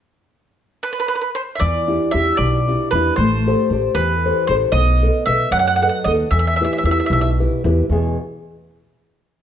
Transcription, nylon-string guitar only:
\new Staff \with { instrumentName = "Nylon-string guitar" } { \time 6/8 \key e \minor \tempo 4. = 76 r2. | e8 <d' e' g'>8 <d' e' g'>8 b,8 <d' e' g'>8 <d' e' g'>8 | a8 <g' a' c''>8 <g' a' c''>8 e8 <g' a' c''>8 <g' a' c''>8 | b8 <a' b' dis''>8 <a' b' dis''>8 fis8 <a' b' dis''>8 <a' b' dis''>8 |
e8 <e' g' b'>8 <e' g' b'>8 b,8 <e' g' b'>8 <e' g' b'>8 | <e, b, e b gis' e''>8 r2 r8 | }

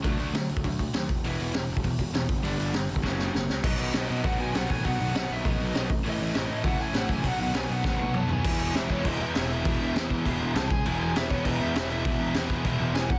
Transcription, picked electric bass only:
\new Staff \with { instrumentName = "Picked electric bass" } { \clef bass \time 4/4 \key fis \minor \tempo 4 = 200 d,8 d,8 d,8 d,8 d,4 dis,8 e,,8 | e,,8 e,,8 e,,8 e,,8 e,,8 e,,8 e,,8 g,,8 | g,,8 g,,8 g,,8 g,,8 fis,,4 fis,,8 cis,8 | \key e \major b,,8 b,,8 b,,8 b,8 a,,8 b,8 b,,8 a,,8 |
b,,8 b,,8 b,,8 b,,8 a,,8 b,,8 b,,8 a,,8 | a,,8 a,,8 a,,8 a,8 fis,,8 a,8 a,,8 fis,,8 | b,,8 b,,8 b,,8 b,,8 a,,8 b,,8 b,,8 b,,8 | e,,4 e,,4 e,,8 e,8 e,,4 |
e,,8 e,,8 e,4 e,,8 e,,8 c,8 cis,8 | e,,4 e,,4 e,,8 e,8 e,,4 | e,,8 e,,8 e,4 e,,8 e,,8 e,,8 cis,8 | }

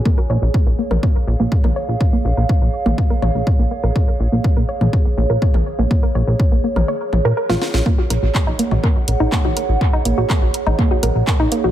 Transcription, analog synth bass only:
\new Staff \with { instrumentName = "Analog synth bass" } { \clef bass \time 4/4 \key bes \minor \tempo 4 = 123 r8 bes,,16 bes,,16 r16 bes,,16 r16 bes,,16 r8 bes,,16 bes,,16 r16 bes,,16 r16 bes,,16 | r8 bes,,16 bes,,16 r16 bes,,16 r16 bes,,16 r8 bes,,16 bes,,16 r16 bes,,16 r16 bes,,16 | r8 bes,,16 bes,,16 r16 bes,,16 r16 bes,,16 r8 bes,,16 bes,,16 r16 bes,,16 r16 bes,,16 | r8 bes,,16 bes,,16 r16 bes,,16 r16 bes,,16 r8 bes,,16 bes,16 r16 bes,,16 r16 bes,,16 |
r8 bes,,16 bes,,16 r16 bes,,16 r16 bes,,16 r8 bes,,16 bes,,16 r16 bes,,16 r16 bes,,16 | r8 bes,,16 bes,,16 r16 bes,,16 r16 bes,,16 r8 bes,,16 bes,,16 r16 bes,,16 r16 bes,,16 | }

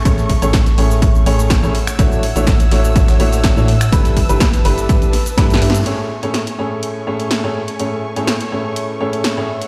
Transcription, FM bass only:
\new Staff \with { instrumentName = "FM bass" } { \clef bass \time 4/4 \key a \major \tempo 4 = 124 a,,8. a,,8. a,,4 a,,8. a,,16 r8 | a,,8. a,,8. a,,4 a,,8. a,8. | g,,8. g,,8. g,,4 r8 g,8 g,8 | r1 |
r1 | }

